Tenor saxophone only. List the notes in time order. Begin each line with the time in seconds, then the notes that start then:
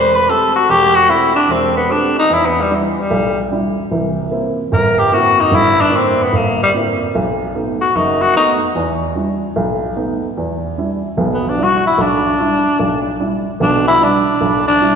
Already playing: C5
0.15 B4
0.30 A4
0.56 F#4
0.70 G4
0.95 F#4
1.09 E4
1.35 D4
1.51 C4
1.77 B3
1.92 D4
2.19 D#4
2.34 E4
2.46 B3
2.61 G3
2.75 E3
3.01 G3
4.74 A#4
4.99 G4
5.13 F#4
5.40 D#4
5.55 E4
5.81 D4
5.96 C4
6.23 B3
6.36 A#3
6.63 G3
7.81 F#4
7.96 D#4
8.22 F#4
8.37 D#4
11.34 B3
11.49 D4
11.63 F#4
11.87 E4
12.02 D4
13.62 D4
13.87 E4
14.04 D4
14.68 D4